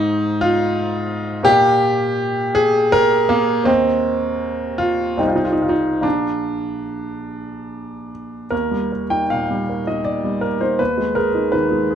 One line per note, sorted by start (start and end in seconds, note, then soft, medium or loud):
0.00 1.41 G#2 medium
0.00 0.41 D#4 loud
0.00 1.41 C5 medium
0.00 1.41 D#5 medium
0.00 1.42 F5 medium
0.41 1.46 F4 loud
1.43 3.63 A#2 medium
1.43 2.55 G4 loud
1.43 2.91 A#4 medium
1.43 3.63 D5 medium
1.43 3.64 F5 medium
2.55 2.93 G#4 loud
2.92 3.30 A#4 loud
3.29 3.67 A#3 loud
3.64 5.14 D#2 medium
3.64 4.79 C4 loud
3.64 5.14 A#4 medium
3.64 5.15 D#5 medium
3.64 5.15 G5 medium
4.78 5.19 F4 medium
5.17 6.00 C2 medium
5.17 5.29 D#4 medium
5.17 6.01 C5 soft
5.17 6.01 D#5 soft
5.17 6.01 G5 medium
5.28 5.37 F4 medium
5.36 5.45 D#4 medium
5.44 5.54 F4 medium
5.53 5.62 D#4 medium
5.62 5.71 F4 medium
5.69 6.03 D#4 medium
6.01 8.46 A#1 soft
6.01 8.10 D4 medium
6.01 8.46 F5 soft
6.01 8.46 A#5 soft
8.51 10.76 D#2 medium
8.51 8.91 A#4 medium
8.71 9.03 G3 soft
8.92 9.23 A#4 soft
9.10 9.42 D#4 soft
9.10 9.30 G5 medium
9.30 9.62 A#2 soft
9.30 9.87 F5 medium
9.50 9.80 G3 soft
9.69 9.99 A#4 soft
9.87 10.47 D#4 soft
9.87 10.06 D#5 medium
10.05 10.43 D5 medium
10.24 10.54 G3 soft
10.41 10.61 A#4 medium
10.61 10.80 D#4 soft
10.61 10.80 C5 medium
10.79 11.95 D#2 medium
10.79 11.16 B4 medium
10.98 11.27 G#3 soft
11.15 11.46 G#4 soft
11.15 11.53 A#4 medium
11.35 11.64 D#4 soft
11.52 11.83 D#3 soft
11.52 11.95 B4 medium
11.71 11.95 G#3 soft
11.90 11.95 G#4 soft